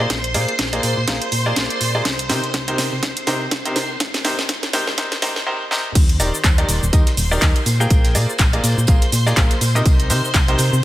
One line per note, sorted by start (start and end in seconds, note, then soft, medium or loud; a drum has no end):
0.00 0.12 A#3 medium
0.00 0.12 F4 medium
0.00 0.12 G#4 medium
0.00 0.12 A#4 medium
0.00 5.47 C5 medium
0.00 0.12 D5 loud
0.00 5.47 C6 medium
0.10 0.36 A#1 loud
0.10 kick loud
0.10 snare medium
0.10 closed hi-hat medium
0.24 closed hi-hat medium
0.34 0.46 A#2 medium
0.34 0.50 A#3 medium
0.34 0.50 F4 medium
0.34 0.50 G#4 medium
0.34 0.50 A#4 medium
0.34 0.50 D5 medium
0.34 open hi-hat loud
0.48 closed hi-hat soft
0.59 0.80 A#1 medium
0.59 kick loud
0.59 snare medium
0.59 closed hi-hat medium
0.73 0.95 A#3 medium
0.73 0.95 F4 medium
0.73 0.95 G#4 medium
0.73 0.95 A#4 medium
0.73 0.95 D5 medium
0.73 closed hi-hat soft
0.83 0.95 A#2 medium
0.83 open hi-hat loud
0.97 1.06 A#2 medium
1.08 1.19 A#1 loud
1.08 1.23 A#3 medium
1.08 1.23 F4 medium
1.08 1.23 G#4 medium
1.08 1.23 A#4 medium
1.08 1.23 F5 medium
1.08 kick loud
1.08 snare medium
1.08 closed hi-hat medium
1.22 closed hi-hat medium
1.32 1.53 A#2 loud
1.32 open hi-hat loud
1.46 1.91 A#3 medium
1.46 1.91 F4 medium
1.46 1.91 G#4 medium
1.46 1.91 A#4 medium
1.46 1.91 D5 medium
1.56 1.68 A#1 medium
1.56 kick medium
1.56 snare medium
1.56 closed hi-hat medium
1.70 closed hi-hat soft
1.81 2.01 A#2 medium
1.81 open hi-hat loud
1.95 2.04 F4 medium
1.95 2.04 G#4 medium
1.95 2.04 A#4 medium
1.95 2.04 D5 loud
2.05 2.31 C2 loud
2.05 kick loud
2.05 snare medium
2.05 closed hi-hat medium
2.19 closed hi-hat medium
2.29 2.45 C3 medium
2.29 2.41 C3 loud
2.29 2.45 D#4 medium
2.29 2.45 G4 medium
2.29 2.45 A#4 medium
2.29 2.45 C5 medium
2.29 snare medium
2.29 open hi-hat loud
2.44 closed hi-hat soft
2.54 2.75 C2 medium
2.54 kick loud
2.54 snare medium
2.54 closed hi-hat medium
2.68 2.90 C3 medium
2.68 2.90 D#4 medium
2.68 2.90 G4 medium
2.68 2.90 A#4 medium
2.68 2.90 C5 medium
2.68 closed hi-hat medium
2.78 2.90 C3 medium
2.78 snare medium
2.78 open hi-hat loud
2.92 3.01 C3 medium
3.03 3.14 C2 medium
3.03 kick loud
3.03 snare medium
3.03 closed hi-hat medium
3.17 closed hi-hat medium
3.27 3.48 C3 medium
3.27 3.43 C3 medium
3.27 3.43 D#4 medium
3.27 3.43 G4 medium
3.27 3.43 A#4 medium
3.27 3.43 C5 medium
3.27 snare medium
3.27 open hi-hat loud
3.51 3.63 C2 medium
3.51 kick loud
3.51 snare medium
3.51 closed hi-hat medium
3.65 3.88 C3 medium
3.65 3.88 D#4 medium
3.65 3.88 G4 medium
3.65 3.88 A#4 medium
3.65 3.88 C5 medium
3.65 closed hi-hat soft
3.76 3.97 C3 medium
3.76 snare medium
3.76 open hi-hat loud
4.00 4.26 G#1 loud
4.00 kick loud
4.00 snare medium
4.00 closed hi-hat medium
4.14 snare medium
4.14 closed hi-hat medium
4.25 4.36 G#2 medium
4.25 4.40 C3 medium
4.25 4.40 D#4 medium
4.25 4.40 G4 medium
4.25 4.40 A#4 medium
4.25 4.40 C5 medium
4.25 snare medium
4.25 open hi-hat loud
4.39 snare medium
4.39 closed hi-hat soft
4.49 4.70 G#1 medium
4.49 kick loud
4.49 snare loud
4.49 closed hi-hat medium
4.63 snare medium
4.63 closed hi-hat medium
4.73 4.85 G#2 medium
4.73 4.89 C3 medium
4.73 4.89 D#4 medium
4.73 4.89 G4 medium
4.73 4.89 A#4 medium
4.73 4.89 C5 loud
4.73 snare loud
4.73 open hi-hat loud
4.87 4.96 G#2 medium
4.87 snare medium
4.98 5.09 G#1 loud
4.98 5.13 C3 medium
4.98 5.13 D#4 medium
4.98 5.13 G4 medium
4.98 5.13 A#4 medium
4.98 5.13 C5 loud
4.98 kick loud
4.98 snare loud
4.98 closed hi-hat medium
5.12 snare loud
5.12 closed hi-hat soft
5.22 5.43 G#2 loud
5.22 5.38 C3 medium
5.22 5.38 D#4 medium
5.22 5.38 G4 medium
5.22 5.38 A#4 medium
5.22 5.38 C5 medium
5.22 snare loud
5.22 open hi-hat loud
5.36 snare medium
5.47 5.62 C3 medium
5.47 5.62 D#4 medium
5.47 5.62 G4 medium
5.47 5.62 A#4 medium
5.47 5.62 C5 loud
5.71 5.87 C3 medium
5.71 5.87 D#4 medium
5.71 5.87 G4 medium
5.71 5.87 A#4 medium
5.71 5.87 C5 medium
5.71 snare medium
5.95 6.21 D#2 loud
5.95 10.84 C5 medium
5.95 10.84 C6 medium
5.95 kick loud
5.95 closed hi-hat medium
5.95 crash loud
5.95 tambourine medium
5.95 cabasa soft
6.09 closed hi-hat medium
6.20 6.31 D#1 loud
6.20 6.35 D#3 medium
6.20 6.35 D#4 medium
6.20 6.35 G4 medium
6.20 6.35 A#4 medium
6.20 6.35 D5 medium
6.20 open hi-hat loud
6.20 tambourine medium
6.20 cabasa medium
6.34 cabasa soft
6.44 6.65 D#2 medium
6.44 kick loud
6.44 snare loud
6.44 clap loud
6.44 closed hi-hat medium
6.44 tambourine medium
6.44 cabasa soft
6.58 6.80 D#3 medium
6.58 6.80 D#4 medium
6.58 6.80 G4 medium
6.58 6.80 A#4 medium
6.58 6.80 D5 loud
6.58 closed hi-hat medium
6.69 6.80 D#1 medium
6.69 open hi-hat medium
6.69 tambourine medium
6.69 cabasa medium
6.83 6.91 D#1 medium
6.83 cabasa soft
6.93 7.04 D#2 loud
6.93 7.08 D#3 medium
6.93 7.08 D#4 medium
6.93 7.08 G4 medium
6.93 7.08 A#4 medium
6.93 7.08 D#5 medium
6.93 kick loud
6.93 closed hi-hat medium
6.93 tambourine medium
6.93 cabasa soft
7.06 snare medium
7.06 closed hi-hat medium
7.17 7.38 D#1 medium
7.17 open hi-hat loud
7.17 open hi-hat medium
7.17 cabasa medium
7.31 7.40 D#3 loud
7.31 7.40 D#4 medium
7.31 7.40 G4 medium
7.31 7.40 A#4 medium
7.31 7.40 D5 loud
7.31 cabasa soft
7.42 7.53 D#2 medium
7.42 kick loud
7.42 snare loud
7.42 clap loud
7.42 closed hi-hat medium
7.42 tambourine medium
7.42 cabasa soft
7.56 closed hi-hat medium
7.66 7.87 A#2 medium
7.66 open hi-hat medium
7.66 tambourine medium
7.66 cabasa medium
7.80 8.12 A#3 loud
7.80 8.12 F4 medium
7.80 8.12 G#4 medium
7.80 8.12 A#4 medium
7.80 8.12 G5 loud
7.80 cabasa soft
7.90 8.16 A#1 medium
7.90 kick loud
7.90 closed hi-hat medium
7.90 tambourine medium
7.90 cabasa soft
8.04 snare medium
8.04 closed hi-hat medium
8.14 8.26 A#2 loud
8.14 8.30 A#3 medium
8.14 8.30 F4 medium
8.14 8.30 G#4 medium
8.14 8.30 A#4 medium
8.14 8.30 D5 medium
8.14 snare soft
8.14 open hi-hat loud
8.14 tambourine medium
8.14 cabasa medium
8.30 cabasa soft
8.38 8.60 A#1 medium
8.38 kick loud
8.38 snare loud
8.38 clap loud
8.38 closed hi-hat medium
8.38 tambourine medium
8.38 cabasa soft
8.53 8.75 A#3 loud
8.53 8.75 F4 medium
8.53 8.75 G#4 medium
8.53 8.75 A#4 medium
8.53 8.75 D5 loud
8.53 closed hi-hat medium
8.64 8.75 A#2 medium
8.64 open hi-hat medium
8.64 tambourine medium
8.64 cabasa medium
8.78 8.86 A#2 medium
8.78 cabasa soft
8.87 9.00 A#1 loud
8.87 9.04 A#3 medium
8.87 9.04 F4 medium
8.87 9.04 G#4 medium
8.87 9.04 A#4 medium
8.87 9.04 F5 medium
8.87 kick loud
8.87 closed hi-hat medium
8.87 tambourine loud
8.87 cabasa soft
9.02 snare soft
9.02 closed hi-hat medium
9.12 9.33 A#2 medium
9.12 snare soft
9.12 open hi-hat loud
9.12 tambourine medium
9.12 cabasa medium
9.26 9.35 A#3 medium
9.26 9.35 F4 medium
9.26 9.35 G#4 medium
9.26 9.35 A#4 medium
9.26 9.35 D5 loud
9.26 snare medium
9.26 cabasa soft
9.36 9.48 A#1 medium
9.36 9.52 A#3 medium
9.36 9.52 F4 medium
9.36 9.52 G#4 medium
9.36 9.52 A#4 medium
9.36 9.52 F5 medium
9.36 kick loud
9.36 snare loud
9.36 clap loud
9.36 closed hi-hat medium
9.36 tambourine medium
9.36 cabasa soft
9.51 snare soft
9.51 closed hi-hat medium
9.61 9.82 A#2 medium
9.61 open hi-hat loud
9.61 tambourine medium
9.61 cabasa medium
9.75 10.07 C3 medium
9.75 10.07 D#4 medium
9.75 10.07 G4 medium
9.75 10.07 A#4 medium
9.75 10.07 D#5 loud
9.75 closed hi-hat soft
9.75 cabasa soft
9.86 10.12 C2 loud
9.86 kick loud
9.86 closed hi-hat medium
9.86 tambourine medium
9.86 cabasa soft
10.00 closed hi-hat medium
10.10 10.26 C3 medium
10.10 10.22 C3 loud
10.10 10.26 D#4 medium
10.10 10.26 G4 medium
10.10 10.26 A#4 medium
10.10 10.26 C5 medium
10.10 open hi-hat loud
10.10 tambourine medium
10.10 cabasa medium
10.25 cabasa soft
10.34 10.55 C2 medium
10.34 kick loud
10.34 snare loud
10.34 clap loud
10.34 closed hi-hat medium
10.34 tambourine medium
10.34 cabasa soft
10.48 10.71 C3 medium
10.48 10.71 D#4 medium
10.48 10.71 G4 medium
10.48 10.71 A#4 medium
10.48 10.71 C5 loud
10.48 closed hi-hat medium
10.58 10.70 C3 medium
10.58 open hi-hat loud
10.58 tambourine medium
10.58 cabasa medium
10.73 10.81 C3 medium
10.73 cabasa soft